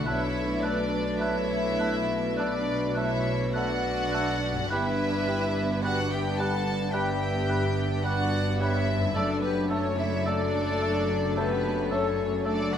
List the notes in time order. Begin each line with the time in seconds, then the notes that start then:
Already playing: B2 A3 D4
0.02 A3 D4 E4 B4 E5
0.06 B1 B2 A3 B4 C#5
0.62 A3 D4 B4 D5
1.20 A3 E4 B4 C#5 E5
1.79 A3 B4
2.37 A3 D4 B4 D5
2.95 A3 E4 B4 C#5 E5
3.53 A3 D4 F#4 B4 D5 F#5
4.12 A3 B4
4.52 G2
4.56 G3
4.61 D4
4.65 B4
4.70 G1 G2 G3 B3 D4 E4 B4 E5
5.27 G3 B4
5.82 G3 F#4 B4 D5 F#5
6.10 G4 E5 G5
6.37 G3 A4 B4 F#5 A5
6.91 G3 B3 D4 G4 B4 E5 G5
7.49 G3 B4
8.03 G3 F#4 B4 D5 F#5
8.59 G3 E4 B4 C#5 E5
8.97 F#2
9.02 A3
9.06 D4
9.11 A4
9.15 F#1 F#2 A3 D4 A4 D5
9.42 B3 G4 B4
9.70 A3 C#4 A4 C#5
9.97 E4 C#5 E5
10.25 A3 D4 A4 D5
10.81 A3 A4
11.36 A3 B3 G4 A4 B4
11.90 A3 C#4 A4 C#5
12.45 A3 D4 A4 D5
12.73 F#4 D5 F#5